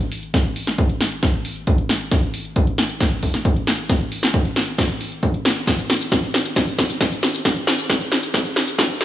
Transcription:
0.01 closed hi-hat
0.12 open hi-hat
0.23 closed hi-hat
0.34 kick, snare, closed hi-hat
0.45 closed hi-hat
0.56 open hi-hat
0.67 snare, closed hi-hat
0.78 kick, closed hi-hat
0.89 closed hi-hat
1.01 snare, open hi-hat
1.12 closed hi-hat
1.23 kick, snare, closed hi-hat
1.34 closed hi-hat
1.45 open hi-hat
1.56 closed hi-hat
1.67 kick, closed hi-hat
1.78 closed hi-hat
1.89 snare, open hi-hat
2.00 closed hi-hat
2.11 kick, snare, closed hi-hat
2.23 closed hi-hat
2.34 open hi-hat
2.45 closed hi-hat
2.56 kick, closed hi-hat
2.67 closed hi-hat
2.78 snare, open hi-hat
2.89 closed hi-hat
3.01 kick, snare, closed hi-hat
3.12 closed hi-hat
3.23 kick, open hi-hat
3.34 snare
3.45 kick, closed hi-hat
3.56 closed hi-hat
3.67 snare, open hi-hat
3.78 closed hi-hat
3.89 kick, snare, closed hi-hat
4.01 closed hi-hat
4.12 open hi-hat
4.23 snare
4.34 kick, closed hi-hat
4.45 closed hi-hat
4.56 snare, open hi-hat
4.67 closed hi-hat
4.78 kick, snare, closed hi-hat
4.90 closed hi-hat
5.01 open hi-hat
5.12 closed hi-hat
5.23 kick, closed hi-hat
5.34 closed hi-hat
5.45 snare, open hi-hat
5.56 closed hi-hat
5.67 kick, snare, closed hi-hat, shaker
5.79 closed hi-hat, shaker
5.90 snare, open hi-hat
6.01 closed hi-hat, shaker
6.12 kick, snare, closed hi-hat, shaker
6.23 closed hi-hat, shaker
6.34 snare, open hi-hat
6.45 closed hi-hat, shaker
6.56 kick, snare, closed hi-hat, shaker
6.68 closed hi-hat, shaker
6.78 kick, snare, open hi-hat
6.90 closed hi-hat, shaker
7.01 kick, snare, closed hi-hat, shaker
7.12 closed hi-hat, shaker
7.23 snare, open hi-hat
7.34 shaker
7.45 kick, snare, closed hi-hat, shaker
7.56 closed hi-hat, shaker
7.67 snare, open hi-hat
7.78 closed hi-hat, shaker
7.90 kick, snare, closed hi-hat, shaker
8.01 closed hi-hat, shaker
8.12 snare, open hi-hat
8.23 closed hi-hat, shaker
8.34 kick, snare, closed hi-hat, shaker
8.45 closed hi-hat, shaker
8.56 snare, open hi-hat
8.67 closed hi-hat, shaker
8.78 kick, snare, closed hi-hat, shaker
8.90 closed hi-hat, shaker
9.01 snare, open hi-hat

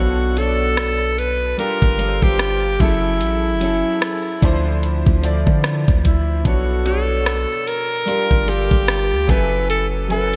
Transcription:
Already playing: B1 B2 B3 D4 F#4 C5 A5
0.00 A4 C#5
0.36 B2 B3 D4 A4 C#5, closed hi-hat
0.46 D5
0.77 cross-stick, closed hi-hat
1.19 B4, closed hi-hat
1.57 G3 D4 F4 G4 A#4, closed hi-hat
1.82 G1, kick
1.98 G3 D4 F4 A4, closed hi-hat
2.02 B4
2.08 C5
2.22 G1 G4, kick
2.39 cross-stick, closed hi-hat
2.79 F#1 F#3 C#4 E4 G#4, kick, closed hi-hat
2.83 A4
3.21 A1, closed hi-hat
3.53 F#1
3.60 F#3 C#4 E4 G#4, closed hi-hat
3.64 A4
4.02 cross-stick, closed hi-hat
4.41 D2 D3 F3 D4 E4, kick, closed hi-hat
4.45 C5
4.83 closed hi-hat
5.06 D2, kick
5.21 D3 F3 D4 E4 D5, closed hi-hat
5.47 D3, kick
5.64 cross-stick, closed hi-hat
5.88 D2, kick
6.05 E4, kick, closed hi-hat
6.43 B1 B2 B3 D4 F#4 A4 C#5, kick, closed hi-hat
6.84 B2 B3 D4 F#4 A4 C#5, closed hi-hat
7.26 cross-stick, closed hi-hat
7.67 A#4, closed hi-hat
8.05 G3 D4 F4 G4, closed hi-hat
8.10 A#4
8.31 G1, kick
8.46 G3 D4 F4 G4 A4 A#4, closed hi-hat
8.71 G1, kick
8.88 cross-stick, closed hi-hat
9.12 D2
9.27 F#1 F#3 C#4 E4 B4 G#5, kick, closed hi-hat
9.31 A4
9.70 A4, closed hi-hat
10.08 F#3 C#4 E4 A4 A#4 G#5, closed hi-hat
10.18 B4

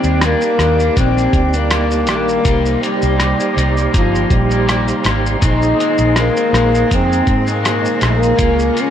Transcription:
Already playing: A#3 C4 D#4 G4 D5 A#5 D6
0.04 D#2 A#3 D4, shaker
0.08 G3
0.21 D#3 G3 A#3 D4, cross-stick, closed hi-hat, shaker
0.41 A#3 D4, shaker
0.45 G3
0.58 D#2 D#3 G3 A#3 D4, cross-stick, closed hi-hat, shaker
0.78 G3 A#3 D4, shaker
0.96 A#1 D#3 G3 A#3 C4 D4, kick, closed hi-hat, shaker
1.17 G3 A#3 D4, shaker
1.33 D2, kick, closed hi-hat, shaker
1.53 G3 A#3 D4, shaker
1.71 G3 A#3 D4, cross-stick, closed hi-hat, shaker
1.91 shaker
2.06 A#1 D#3 G3 A#3 D4, cross-stick, closed hi-hat, shaker
2.10 A#3
2.29 shaker
2.42 C2 C3 G3 A#3 D#4 G4 C6, kick, closed hi-hat, shaker
2.47 C5
2.66 shaker
2.81 C3 G3 A#3 D#4, closed hi-hat, shaker
3.01 C2 G3 A#3 D#4, shaker
3.17 C3 G3 A#3 D#4, cross-stick, closed hi-hat, shaker
3.38 G3 A#3 D#4, shaker
3.53 C2 C3 G3 A#3 D#4
3.58 G3, closed hi-hat, shaker
3.74 G3 A#3 D#4, shaker
3.91 G1 C3 F3 G3 A#3 D#4, kick, closed hi-hat, shaker
4.11 G3 A#3 D#4
4.15 shaker
4.30 A#1 G3, kick, closed hi-hat, shaker
4.49 G3 A#3 D#4, shaker
4.66 C3 G3 A#3 D#4, cross-stick, closed hi-hat, shaker
4.88 shaker
5.02 G#1 C3 G3 A#3 D#4, closed hi-hat, shaker
5.06 cross-stick
5.26 shaker
5.39 A#1 A#2 D#3 G#3 A#3 C4 D#4 G#4 D#5, kick, closed hi-hat, shaker
5.44 D#4 C5
5.62 shaker
5.77 A#2 D#3 G#3 C4, closed hi-hat, shaker
5.98 A#1 D#3 G#3 C4, shaker
6.14 A#2 D#3 G#3 C4, cross-stick, closed hi-hat, shaker
6.19 A#3
6.33 D#3 G#3 C4, shaker
6.51 A#1 A#2 D#3 G#3 C4, cross-stick
6.55 closed hi-hat, shaker
6.70 D#3 G#3 C4
6.75 shaker
6.87 F2 A#2 D#3 G#3 C4
6.91 C4, kick, closed hi-hat, shaker
7.06 D#3 G#3 C4
7.13 shaker
7.27 G#2, kick, closed hi-hat, shaker
7.44 D#3 G#3 C4, shaker
7.51 A#3
7.61 A#2 D#3 G#3 C4
7.65 cross-stick, closed hi-hat, shaker
7.85 shaker
7.98 A#2 D#3 G#3 C4, closed hi-hat, shaker
8.02 A#1 A#3, cross-stick
8.23 shaker
8.36 C#2 C#3 G#3 A#3 F4, kick, closed hi-hat, shaker
8.40 G#4 A#4 F5 C#6
8.59 shaker
8.73 C#3 G#3 A#3 F4
8.77 closed hi-hat, shaker
8.81 C#4

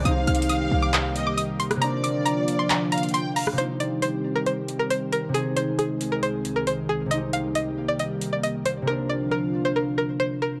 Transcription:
Already playing: D#3 G#4
0.00 C3 C4
0.05 C2 G3 A#3 D#4 G4 F5 D#6, closed hi-hat
0.11 G4
0.27 C2 F6, closed hi-hat
0.35 closed hi-hat
0.42 closed hi-hat
0.49 D#6, closed hi-hat
0.71 C2
0.82 D6
0.94 D#6, clap, closed hi-hat
1.16 D#5, closed hi-hat
1.27 D6
1.37 D#6, closed hi-hat
1.60 C6, closed hi-hat
1.71 cross-stick, closed hi-hat
1.76 C3 C4
1.82 D3 F3 D4 F4 D5 A#5, closed hi-hat
1.87 A#4
2.04 D6, closed hi-hat
2.25 A#5, closed hi-hat
2.48 closed hi-hat
2.59 C6
2.70 A#5, clap, closed hi-hat
2.92 F5 A#5, closed hi-hat
2.98 closed hi-hat
3.03 closed hi-hat
3.09 closed hi-hat
3.14 G5 C6, closed hi-hat
3.36 F5 A#5, open hi-hat
3.47 cross-stick
3.53 C3 C4
3.58 D#3 G3 C4 D#4 G4 C5, closed hi-hat
3.64 G4
3.80 D5, closed hi-hat
4.02 C5, closed hi-hat
4.36 A#4
4.46 C5, closed hi-hat
4.68 closed hi-hat
4.79 A#4
4.90 C5, closed hi-hat
5.12 A#4, closed hi-hat
5.29 C3 C4
5.34 C2 G#3 D#4 G#4, closed hi-hat
5.40 G#4
5.57 C5, closed hi-hat
5.79 G#4, closed hi-hat
6.01 closed hi-hat
6.12 A#4
6.23 C5, closed hi-hat
6.45 closed hi-hat
6.56 A#4
6.67 C5, closed hi-hat
6.89 G#4
7.06 C3 C4
7.11 G3 A#3 D#4 G4 D#5, closed hi-hat
7.17 G4
7.33 F5, closed hi-hat
7.55 D#5, closed hi-hat
7.88 D5
7.99 D#5, closed hi-hat
8.21 closed hi-hat
8.33 D5
8.43 D#5, closed hi-hat
8.65 C5, closed hi-hat
8.82 C3 C4
8.87 D3 F3 D4 F4 A#4
8.93 A#4
9.09 D5
9.31 A#4
9.65 C5
9.76 A#4
9.98 A#4
10.20 C5
10.42 A#4

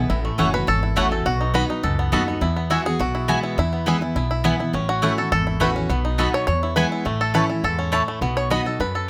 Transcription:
0.10 A1 A2 E4
0.25 A3
0.38 F#1 E3 A3 C#4 E4 F#4 C#5 F#5
0.53 C#4 F#4 B4
0.67 G#1 E2 A4
0.83 E4
0.96 A1 E3 A3 C#4 E4 F#4 C#5 F#5
1.11 C#4 F#4 A4
1.26 B1 B2 F#4
1.41 D#4
1.54 F#3 B3 D#4 F#4 B4 D#5 B5
1.69 D#4 F#4
1.83 C#2 F#2 A4
1.99 B3
2.12 D#2 F#3 B3 D#4 F#4 A4 D#5 B5
2.27 B3 D#4 F#4
2.41 E2 E4
2.56 B3
2.70 E3 G#3 B3 E4 F#4 E5 G#5
2.85 B3 F#4 G#4
2.99 B1 B2 F#4
3.15 E4
3.28 E3 G#3 B3 F#4 E5 G#5
3.43 E4
3.58 E2 E4
3.73 B3
3.86 E3 G#3 B3 E4 G#4 B4 G#5
4.01 B3 E4
4.15 B1 B2 E4
4.31 E4
4.44 E3 G#3 B3 E4 B4 G#5
4.59 B3 E4
4.73 A1 A2 C#4
4.89 F#4
5.02 E3 A3 C#4 E4 F#4 C#5 F#5
5.17 C#4 F#4 A4
5.32 G#1 E2 A4
5.47 E4
5.60 A1 E3 A3 C#4 E4 F#4 B4 C#5 F#5
5.75 C#4 F#4
5.90 B1 B2 B3
6.05 D#4
6.18 F#3 B3 D#4 F#4 A4 D#5 B5
6.34 C#5
6.47 E2 C#5
6.63 E4
6.76 E3 G#3 B3 E4 B4 G#5
6.92 E4
7.05 A1 A2 A3
7.21 A4
7.34 E3 A3 C#4 E4 B4 C#5 A5
7.49 C#4 E4
7.64 E2 G#2 A4
7.79 C#4
7.92 A2 A3 E4 C#5 A5
8.08 A3
8.21 B1 B2 B3
8.37 C#5
8.50 F#3 B3 D#4 F#4 D#5 B5
8.65 D#4 F#4 A4
8.80 F#2 B4
8.95 A4

